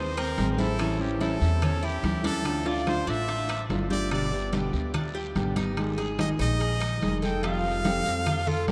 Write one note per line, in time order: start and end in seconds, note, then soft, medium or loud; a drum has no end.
0.00 0.34 D#2 medium
0.00 0.17 D#4 medium
0.00 0.20 C5 medium
0.17 0.58 C4 medium
0.17 0.51 A#4 loud
0.17 high conga soft
0.17 high timbale medium
0.17 claves medium
0.38 1.36 A1 medium
0.38 0.58 D#3 medium
0.38 0.58 G#3 medium
0.38 0.58 C4 medium
0.38 0.57 G#4 medium
0.38 high conga medium
0.38 high timbale medium
0.38 short guiro medium
0.52 0.61 A#4 medium
0.58 0.80 G#3 soft
0.58 0.79 C4 soft
0.58 0.79 E4 medium
0.58 0.79 G#4 soft
0.58 1.03 A4 loud
0.58 high conga medium
0.58 short guiro medium
0.79 0.99 E3 medium
0.79 1.00 G3 medium
0.79 1.20 C#4 medium
0.79 0.99 C#4 medium
0.79 0.98 E4 medium
0.79 high timbale loud
0.79 long guiro medium
0.79 claves medium
1.00 1.19 G3 soft
1.00 1.20 C#4 soft
1.00 1.20 E4 soft
1.00 1.21 G4 medium
1.00 high conga soft
1.20 1.40 E3 medium
1.20 1.41 G3 medium
1.20 1.40 C#4 medium
1.20 1.61 E4 medium
1.20 1.39 E4 medium
1.20 1.87 A4 loud
1.20 high conga medium
1.20 high timbale medium
1.20 short guiro medium
1.40 2.00 E2 medium
1.40 1.60 G3 soft
1.40 1.61 C#4 soft
1.40 1.61 E4 medium
1.40 short guiro medium
1.61 1.83 C#4 medium
1.61 muted nylon-string guitar stroke medium
1.61 high conga soft
1.61 low conga medium
1.61 high timbale medium
1.61 long guiro medium
1.61 claves medium
1.83 2.23 E4 medium
1.83 2.26 G4 loud
1.83 high conga soft
2.03 3.02 D2 medium
2.03 2.23 E3 medium
2.03 2.24 G3 medium
2.03 2.23 C#4 medium
2.03 2.22 E4 medium
2.03 high conga medium
2.03 high timbale medium
2.03 short guiro medium
2.24 2.45 G3 soft
2.24 2.45 C#4 soft
2.24 2.65 D4 medium
2.24 2.44 E4 soft
2.24 2.69 A4 loud
2.24 high conga medium
2.24 high timbale medium
2.24 short guiro medium
2.44 2.65 D3 medium
2.44 2.65 A3 medium
2.44 2.66 D4 medium
2.44 2.64 F4 medium
2.44 high conga soft
2.44 high timbale medium
2.44 long guiro medium
2.44 claves medium
2.65 2.86 A3 soft
2.65 2.86 D4 soft
2.65 2.86 F4 soft
2.65 3.06 F4 medium
2.65 2.88 D5 medium
2.65 high conga soft
2.65 high timbale medium
2.86 3.06 D3 medium
2.86 3.07 A3 medium
2.86 3.07 D4 medium
2.86 3.06 F4 medium
2.86 3.11 C5 loud
2.86 high conga loud
2.86 high timbale medium
2.86 short guiro medium
2.86 claves medium
3.07 3.66 A1 medium
3.07 3.27 A3 soft
3.07 3.28 D4 medium
3.07 3.28 D4 soft
3.07 3.27 F4 soft
3.07 3.65 E5 loud
3.07 high conga soft
3.07 short guiro medium
3.28 3.49 F4 medium
3.28 muted nylon-string guitar stroke medium
3.28 high conga soft
3.28 high timbale medium
3.28 long guiro medium
3.49 3.89 D4 medium
3.49 high conga soft
3.49 high timbale loud
3.49 claves medium
3.69 4.67 G1 medium
3.69 3.90 D3 medium
3.69 3.90 A3 medium
3.69 3.90 D4 medium
3.69 3.89 F4 medium
3.69 high conga medium
3.69 high timbale medium
3.69 low timbale medium
3.69 short guiro medium
3.90 4.12 A3 soft
3.90 4.11 D4 soft
3.90 4.11 F4 soft
3.90 4.11 G4 medium
3.90 4.11 D5 loud
3.90 high conga medium
3.90 short guiro medium
4.11 4.31 B2 medium
4.11 4.32 D3 medium
4.11 4.32 G3 medium
4.11 4.32 B3 medium
4.11 4.52 D4 medium
4.11 4.31 G4 medium
4.11 4.51 D5 loud
4.11 high conga soft
4.11 high timbale medium
4.11 long guiro medium
4.11 claves medium
4.32 4.53 G3 soft
4.32 4.53 B3 soft
4.32 4.52 G4 soft
4.32 high conga soft
4.53 4.73 B2 medium
4.53 4.73 D3 medium
4.53 4.73 G3 medium
4.53 4.73 B3 medium
4.53 4.93 G4 medium
4.53 4.72 G4 medium
4.53 high conga medium
4.53 high timbale medium
4.53 short guiro medium
4.73 5.32 D2 medium
4.73 4.94 G3 soft
4.73 4.94 B3 soft
4.73 4.93 G4 soft
4.73 short guiro medium
4.94 5.14 D4 medium
4.94 muted nylon-string guitar stroke medium
4.94 high conga soft
4.94 low conga medium
4.94 high timbale medium
4.94 long guiro medium
4.94 claves medium
5.15 5.55 G4 medium
5.15 high conga soft
5.35 6.33 G#1 medium
5.35 5.56 B2 medium
5.35 5.56 D3 medium
5.35 5.56 G3 medium
5.35 5.56 B3 medium
5.35 5.55 G4 medium
5.35 high conga medium
5.35 high timbale medium
5.35 short guiro medium
5.56 5.77 G3 soft
5.56 5.77 B3 soft
5.56 5.97 D#4 medium
5.56 5.76 G4 soft
5.56 high conga medium
5.56 high timbale medium
5.56 short guiro medium
5.77 5.97 D#3 medium
5.77 5.98 G#3 medium
5.77 5.98 D#4 medium
5.77 5.97 G#4 medium
5.77 high conga soft
5.77 high timbale medium
5.77 long guiro medium
5.77 claves medium
5.98 6.18 G#3 soft
5.98 6.19 D#4 soft
5.98 6.38 G#4 medium
5.98 6.18 G#4 soft
5.98 high conga soft
5.98 high timbale medium
6.18 6.39 D#3 medium
6.18 6.39 G#3 medium
6.18 6.39 D#4 medium
6.18 6.38 G#4 medium
6.18 6.29 D#5 loud
6.18 high conga loud
6.18 high timbale medium
6.18 short guiro medium
6.18 claves medium
6.39 6.98 A#1 medium
6.39 6.60 G#3 soft
6.39 6.60 D#4 medium
6.39 6.60 D#4 soft
6.39 6.59 G#4 soft
6.39 7.19 D#5 loud
6.39 high conga soft
6.39 short guiro medium
6.60 6.80 G#4 medium
6.60 muted nylon-string guitar stroke medium
6.60 high conga soft
6.60 high timbale medium
6.60 long guiro medium
6.80 7.21 D#4 medium
6.80 high conga soft
6.80 high timbale medium
6.80 claves medium
7.01 8.00 F1 medium
7.01 7.22 D#3 medium
7.01 7.22 G#3 medium
7.01 7.22 D#4 medium
7.01 7.21 G#4 medium
7.01 high conga medium
7.01 high timbale medium
7.01 short guiro medium
7.22 7.44 G#3 soft
7.22 7.43 D#4 soft
7.22 7.43 G#4 soft
7.22 7.43 A4 medium
7.22 7.43 G5 medium
7.22 high conga medium
7.22 short guiro medium
7.43 7.63 F3 medium
7.43 7.64 G3 medium
7.43 7.64 C4 medium
7.43 7.83 F4 medium
7.43 7.63 G4 medium
7.43 8.50 F5 loud
7.43 high conga soft
7.43 high timbale loud
7.43 long guiro medium
7.43 claves medium
7.64 7.84 G3 soft
7.64 7.85 C4 soft
7.64 7.84 G4 soft
7.64 high conga soft
7.85 8.05 F3 medium
7.85 8.05 G3 medium
7.85 8.06 C4 medium
7.85 8.04 G4 medium
7.85 8.25 A4 medium
7.85 high conga medium
7.85 high timbale medium
7.85 short guiro medium
8.06 8.64 F2 medium
8.06 8.25 G3 soft
8.06 8.26 C4 soft
8.06 8.26 G4 soft
8.06 short guiro medium
8.26 8.46 F4 medium
8.26 muted nylon-string guitar stroke soft
8.26 high conga soft
8.26 low conga medium
8.26 high timbale medium
8.26 long guiro medium
8.26 claves medium
8.47 8.68 F4 loud
8.47 8.72 A4 medium
8.47 high conga soft
8.47 low conga medium
8.67 8.72 C2 medium
8.67 8.72 F3 medium
8.67 8.72 G3 medium
8.67 8.72 C4 medium
8.67 high conga medium
8.67 high timbale medium
8.67 low timbale medium
8.67 short guiro medium